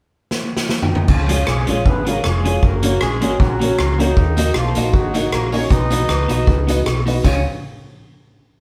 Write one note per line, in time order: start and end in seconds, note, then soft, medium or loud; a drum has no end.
0.31 snare medium
0.57 snare medium
0.69 snare medium
0.83 floor tom loud
0.93 1.09 D#3 medium
0.93 1.08 B3 medium
0.93 1.09 D#4 medium
0.93 floor tom medium
1.08 1.42 C#2 loud
1.08 1.46 F3 medium
1.08 1.46 C#4 medium
1.08 1.46 F4 medium
1.08 kick loud
1.08 crash medium
1.28 1.39 G#3 medium
1.28 1.39 C#4 medium
1.28 1.39 F4 medium
1.28 1.40 F4 medium
1.28 1.39 G#4 medium
1.28 1.40 G#4 medium
1.28 1.40 C#5 loud
1.28 closed hi-hat loud
1.47 1.66 B1 medium
1.47 1.83 G#3 medium
1.47 1.83 F4 medium
1.47 1.83 G#4 medium
1.47 cross-stick loud
1.67 1.83 A#1 medium
1.67 1.77 G#3 medium
1.67 1.77 C#4 medium
1.67 1.78 C#4 medium
1.67 1.78 F4 medium
1.67 1.78 G#4 loud
1.67 1.78 G#4 medium
1.67 1.79 C#5 medium
1.67 closed hi-hat medium
1.85 2.19 G#1 medium
1.85 2.07 B3 medium
1.85 2.07 G#4 medium
1.85 2.07 B4 medium
1.85 muted clean electric guitar stroke soft
1.85 kick loud
2.05 2.16 G#3 medium
2.05 2.16 C#4 medium
2.05 2.17 C#4 medium
2.05 2.16 F4 medium
2.05 2.17 F4 medium
2.05 2.17 G#4 loud
2.05 2.17 G#4 medium
2.05 2.17 C#5 loud
2.05 closed hi-hat medium
2.09 2.24 A#3 medium
2.09 2.24 F#4 medium
2.09 2.24 A#4 medium
2.24 2.57 F1 medium
2.24 2.61 G#3 medium
2.24 2.61 F4 medium
2.24 2.61 G#4 medium
2.24 cross-stick loud
2.44 2.54 G#3 medium
2.44 2.54 C#4 medium
2.44 2.55 C#4 medium
2.44 2.55 F4 medium
2.44 2.55 G#4 medium
2.44 2.56 G#4 medium
2.44 2.56 C#5 medium
2.44 closed hi-hat medium
2.63 2.96 F#1 loud
2.63 3.02 A#3 medium
2.63 3.02 F#4 medium
2.63 3.02 A#4 loud
2.63 kick loud
2.82 2.93 A#3 medium
2.82 2.93 C#4 medium
2.82 2.94 C#4 medium
2.82 2.93 F#4 medium
2.82 2.94 F#4 medium
2.82 2.94 A#4 medium
2.82 2.94 C#5 loud
2.82 closed hi-hat loud
3.01 3.23 A#1 medium
3.01 3.38 G#3 medium
3.01 3.38 C#4 medium
3.01 3.38 G#4 loud
3.01 cross-stick loud
3.21 3.38 G#1 medium
3.21 3.31 A#3 medium
3.21 3.32 C#4 loud
3.21 3.32 C#4 medium
3.21 3.32 F#4 loud
3.21 3.32 F#4 medium
3.21 3.32 A#4 loud
3.21 3.32 A#4 medium
3.21 3.33 C#5 loud
3.21 closed hi-hat medium
3.39 3.73 A#1 medium
3.39 3.99 F#3 medium
3.39 3.99 C#4 medium
3.39 3.99 F#4 medium
3.39 muted clean electric guitar stroke soft
3.39 kick loud
3.60 3.70 A#3 medium
3.60 3.70 C#4 medium
3.60 3.71 C#4 medium
3.60 3.71 F#4 medium
3.60 3.71 A#4 medium
3.60 3.71 C#5 medium
3.60 closed hi-hat medium
3.79 4.12 C#2 medium
3.79 cross-stick loud
3.99 4.55 D#3 medium
3.99 4.09 A#3 medium
3.99 4.56 A#3 medium
3.99 4.09 C#4 medium
3.99 4.55 D#4 medium
3.99 4.09 F#4 medium
3.99 4.10 A#4 medium
3.99 4.09 A#4 medium
3.99 4.10 C#5 loud
3.99 closed hi-hat medium
4.17 4.50 D#2 medium
4.17 kick loud
4.37 4.47 A#3 medium
4.37 4.48 D#4 medium
4.37 4.47 D#4 medium
4.37 4.47 F#4 medium
4.37 4.48 F#4 medium
4.37 4.48 A#4 medium
4.37 4.48 D#5 medium
4.37 closed hi-hat loud
4.37 tambourine medium
4.54 4.73 B1 medium
4.54 4.92 F3 medium
4.54 4.92 A#3 medium
4.54 4.92 F4 medium
4.54 cross-stick loud
4.75 4.92 A#1 medium
4.75 4.85 A#3 medium
4.75 4.86 D#4 medium
4.75 4.86 D#4 loud
4.75 4.86 F#4 medium
4.75 4.86 A#4 medium
4.75 4.86 A#4 loud
4.75 4.87 D#5 loud
4.75 closed hi-hat medium
4.75 tambourine medium
4.93 5.27 G#1 medium
4.93 5.32 F#3 medium
4.93 5.32 D#4 medium
4.93 5.32 F#4 loud
4.93 muted clean electric guitar stroke soft
4.93 kick loud
5.14 5.24 A#3 medium
5.14 5.24 D#4 medium
5.14 5.25 F#4 medium
5.14 5.24 F#4 medium
5.14 5.25 A#4 medium
5.14 5.25 A#4 loud
5.14 5.25 D#5 medium
5.14 closed hi-hat medium
5.14 tambourine medium
5.32 5.65 A#1 medium
5.32 5.52 A#3 medium
5.32 5.52 F#4 medium
5.32 5.52 A#4 loud
5.32 cross-stick loud
5.52 5.62 A#3 medium
5.52 5.69 C#4 medium
5.52 5.63 D#4 medium
5.52 5.63 F#4 medium
5.52 5.63 A#4 medium
5.52 5.70 A#4 medium
5.52 5.63 A#4 medium
5.52 5.69 C#5 loud
5.52 5.63 D#5 loud
5.52 open hi-hat medium
5.52 tambourine medium
5.70 6.03 B1 loud
5.70 7.03 D#4 loud
5.70 7.03 B4 medium
5.70 7.03 D#5 loud
5.70 kick loud
5.70 hi-hat pedal medium
5.90 6.00 B3 medium
5.90 6.01 D#4 medium
5.90 6.01 F#4 medium
5.90 6.01 B4 medium
5.90 6.01 B4 loud
5.90 6.02 D#5 loud
5.90 closed hi-hat loud
5.90 tambourine medium
6.09 6.27 C#2 medium
6.09 cross-stick loud
6.28 6.45 B1 medium
6.28 6.39 B3 medium
6.28 6.39 D#4 medium
6.28 6.40 D#4 medium
6.28 6.39 F#4 loud
6.28 6.40 F#4 medium
6.28 6.40 B4 loud
6.28 6.40 B4 medium
6.28 6.40 D#5 loud
6.28 closed hi-hat medium
6.28 tambourine medium
6.47 6.80 C#2 medium
6.47 kick loud
6.67 6.77 B3 medium
6.67 6.78 D#4 medium
6.67 6.78 F#4 medium
6.67 6.79 F#4 medium
6.67 6.78 B4 medium
6.67 6.79 B4 medium
6.67 6.79 D#5 loud
6.67 closed hi-hat medium
6.67 tambourine medium
6.86 7.19 B1 medium
6.86 cross-stick loud
7.06 7.16 B3 medium
7.06 7.16 D#4 medium
7.06 7.17 D#4 medium
7.06 7.17 F#4 medium
7.06 7.17 B4 medium
7.06 7.17 D#5 loud
7.06 open hi-hat medium
7.06 tambourine medium
7.23 7.44 C#2 loud
7.23 7.36 C#4 medium
7.23 7.40 C#4 medium
7.23 7.45 C#4 medium
7.23 7.37 F4 medium
7.23 7.40 F4 medium
7.23 7.37 G#4 medium
7.23 7.40 G#4 medium
7.23 7.37 C#5 loud
7.23 7.40 C#5 medium
7.23 7.45 C#5 medium
7.23 kick loud
7.23 crash medium
7.23 tambourine medium